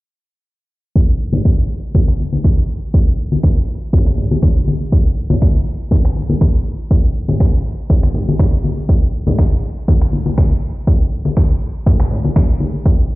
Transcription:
0.96 kick
1.33 high conga, low conga
1.45 finger snap, kick
1.95 kick, high conga
2.08 finger snap
2.20 high conga
2.33 high conga
2.44 finger snap, kick, high conga
2.94 kick
3.32 high conga
3.43 finger snap, kick
3.93 kick, low conga
4.06 finger snap, high conga
4.18 low conga
4.31 high conga
4.42 finger snap, kick, high conga, low conga
4.68 high conga
4.92 kick
5.30 high conga, low conga
5.42 finger snap, kick
5.91 kick, high conga
6.05 finger snap
6.16 high conga
6.30 high conga
6.41 finger snap, kick, high conga
6.91 kick
7.28 high conga, low conga
7.40 finger snap, kick
7.90 kick, low conga
8.03 finger snap, high conga
8.14 low conga
8.29 high conga
8.39 finger snap, kick, high conga, low conga
8.64 high conga
8.89 kick
9.27 high conga, low conga
9.39 finger snap, kick
9.88 kick, high conga
10.02 finger snap
10.13 high conga
10.26 high conga
10.38 finger snap, kick, high conga
10.87 kick
11.25 high conga
11.37 finger snap, kick
11.86 kick, low conga
12.00 finger snap, high conga
12.11 low conga
12.24 high conga
12.36 finger snap, kick, high conga, low conga
12.60 high conga
12.86 kick

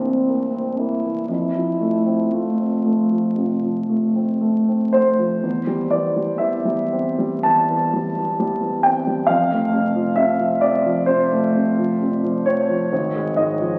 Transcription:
Already playing: C2 E3 A#3 C4
0.05 C4
0.29 A#3
0.54 C4
0.79 A#3 E4
1.05 E3
1.29 F2 E4
1.55 F3
1.80 A3
2.06 C4
2.32 A3 F4
2.59 C4
2.85 A3
3.10 F3
3.36 C3
3.62 F3
3.89 A3
4.15 C4
4.41 A3
4.68 C4
4.92 A3 C5
5.19 F3
5.43 E2
5.67 G3
5.91 E3 D5
6.16 G3
6.38 E3 E5
6.65 G3
6.92 C4
7.18 G3
7.43 E2 A5
7.69 E3
7.93 G3
8.17 E3
8.40 G3
8.61 E3
8.83 C4 G5
9.07 G3
9.27 F2 F5
9.51 A3
9.73 C3
9.96 F3
10.16 C3 E5
10.39 F3
10.61 C4 D5
10.85 F3
11.06 C3 C5
11.32 A3
11.56 C3
11.78 F3
12.01 C3
12.23 F3
12.46 C4 C#5
12.69 F3
12.93 G#1
13.16 G#3
13.36 G#2 D#5
13.61 F3

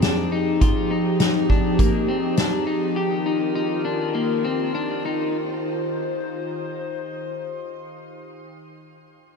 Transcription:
Already playing: F2 F3 C4 D#4 G4 G#4
0.02 D4, snare, closed hi-hat
0.32 D#4
0.61 F4, kick, closed hi-hat
0.91 D#4
1.20 D#4, snare, closed hi-hat
1.50 D4, kick
1.79 A#3, kick, closed hi-hat
2.08 C4
2.37 D4, snare, closed hi-hat
2.67 D#4
2.96 D#3 F4 G4 A#4
3.26 D#4
3.55 D#4
3.85 D4
4.15 A#3
4.45 C4
4.75 D4
5.05 D#4
5.38 C5

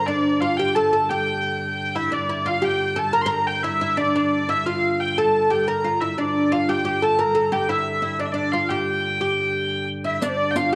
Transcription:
Already playing: G2 D3
0.06 D4 D5
0.41 F4 F5
0.57 G4 G5
0.75 A4 A5
0.92 A4 A5
1.09 G4 G5
1.95 E4 E5
2.11 G2 D3 D4 D5
2.29 E4
2.46 F4 F5
2.62 G4 G5
2.96 A4 A5
3.13 A#4 A#5
3.21 C6
3.26 A#4 A#5
3.47 G5
3.63 E4 E5
3.81 E4
3.97 D4 D5
4.14 D4 D5
4.49 E4 E5
4.66 F4 F5
5.00 G5
5.17 A4 A5
5.50 G4 G5
5.67 A#4 A#5
5.84 F4
6.01 E4 E5
6.18 G2 D3 D4 D5
6.52 F4 F5
6.69 G4 G5
6.85 G4
7.02 A4 A5
7.19 A#4 A#5
7.35 A4
7.52 G4 G5
7.69 E4 E5
8.02 E4 E5
8.19 D4 D5
8.26 E5
8.32 D4 D5
8.52 F4 F5
8.69 G4 G5
9.21 G4 G5
10.04 E4 E5
10.21 G2 D3 D4 D5, riq
10.29 C5
10.37 D5
10.51 G5
10.56 F4 F5, riq

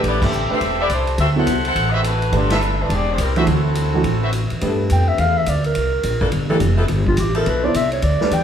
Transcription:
Already playing: A3 D4 G4 B4
0.03 A1, ride
0.08 B3 E4 G4 D5
0.22 C4 G4 A4 E5, kick, crash
0.32 hi-hat pedal
0.50 A3 C4 D4 G4 A4 B4 E5, muted upright bass stroke
0.61 E1, ride
0.79 B3 E4 G4 A4 C5 D5 E5
0.90 C2 A3 E4 G4 C5, hi-hat pedal, ride
1.07 ride
1.18 D2 C4 F#4 A4 E5, ride
1.36 F#3 B3 E4 A4 C5 F#5
1.47 C2, hi-hat pedal, ride
1.65 E4 A4 C5 F#5, ride
1.76 A1, ride
1.91 F#4 B4 C5 D#5 E5
1.96 C4 F#4 A4 E5
2.04 A3 E4 F#4 B4, hi-hat pedal, ride
2.22 ride
2.32 G1 A3 B3 D4 F4 G4 A4 B4 D5, ride
2.50 D4 F4 A4 B4 E5, snare, ride
2.61 hi-hat pedal
2.82 A3 D4 F4 B4
2.89 E1, ride
2.94 C4 G4 G#4 D5
3.12 G#3 D4 G4 C5
3.18 C2 G3 C4 E4 A#4, hi-hat pedal, ride
3.36 D3 E3 G3 A3 C4 D4 F#4 G#4 B4 C5 E5, ride
3.47 D2 F#3 C4 E4 A4, ride
3.75 hi-hat pedal, ride
3.94 E3 A3 D4 F#4
4.04 A1, ride
4.22 F#4 B4 C5 E5
4.33 hi-hat pedal, ride
4.50 A1, ride
4.61 G2 F3 A3 B3 D4 E4 G4 A4 B4, ride
4.90 F2 G5, hi-hat pedal, ride
5.08 E5
5.18 E2 F5, ride
5.37 E5
5.46 D2 D5, hi-hat pedal, ride
5.64 A#4, ride
5.75 C2, ride
6.03 A#1, hi-hat pedal, ride
6.20 E3 A#3 D4 A4, kick
6.32 G1, ride
6.49 E3 A3 A#3 D4 G4 A4
6.60 F1, hi-hat pedal, ride
6.77 F3 B3 E4 A4
6.88 G1, ride
7.07 F4, kick
7.17 A1 G4, hi-hat pedal, ride
7.35 F3 B3 E4 A4 A#4, ride
7.46 B1 B4, ride
7.63 B3 E4 A4 C5 D5
7.74 C2 E5, hi-hat pedal, ride
7.92 C#5, ride
8.02 D2 D5, ride
8.21 A3 D4 G4 B4, muted upright bass stroke, snare
8.31 E2 G5, hi-hat pedal, ride

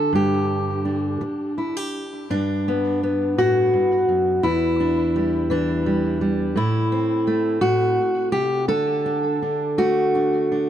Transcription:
Already playing: D3 D4 A4
0.13 G2 G4
0.85 D4
1.21 muted steel-string acoustic guitar stroke
1.58 E4
1.77 G4
2.30 G2 D4
2.68 B3
3.03 B3
3.38 A2 F#4
3.73 G2
4.09 F#2
4.43 E2 E4
4.80 D4
5.16 G3
5.50 E3 D4
5.86 G3
6.21 G3
6.56 A2 E4
6.92 C4
7.27 A3
7.61 A2 F#4
8.32 C3 G4
8.68 D3 A4
9.06 D4
9.42 D4
9.78 A3 F#4
10.15 D4
10.52 D4

